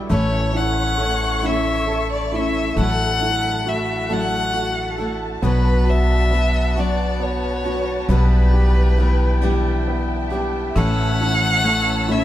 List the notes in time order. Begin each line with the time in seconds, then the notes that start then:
Already playing: G3 G4
0.09 A1 A2 E3 A3 C#4 E4 A4 C#5 E5 C#6
0.53 E4 F#5
0.98 E3 A3 C#4 E4 A4
1.43 A2 E3 A3 C#4 E4 E5
1.87 A4
2.12 D5
2.32 A3 C#4 E4 E5
2.76 A1 A2 F#3 A3 D4 E4 F#5 A5
3.21 E4
3.65 F#3 A3 D4 E4 F#4 E5
4.09 A2 F#3 A3 D4 E4 A4 F#5
4.53 F#4
4.98 A3 D4 E4 A4
5.42 B1 B2 F#3 B3 D4 F#4 B4 F#5
5.86 F#4 E5
6.31 F#3 B3 D4 F#4
6.76 B2 F#3 B3 D4 F#4 D5
7.20 B3 C#5
7.64 B3 D4 F#4
8.09 B1 B2 E3 G3 B3 D4 E4 E5 G5
8.13 B4
8.53 G4
8.97 E3 G3 B3 D4 E4
9.42 B2 E3 G3 D4 E4 G4
9.88 B3
10.30 G3 D4 E4 G4
10.75 A1 A2 E3 A3 C#4 E4 C#5 F#5 A5 E6
11.21 E4
11.63 E3 A3 C#4 E4
12.08 A2 E3 A3 C#4 E4 E5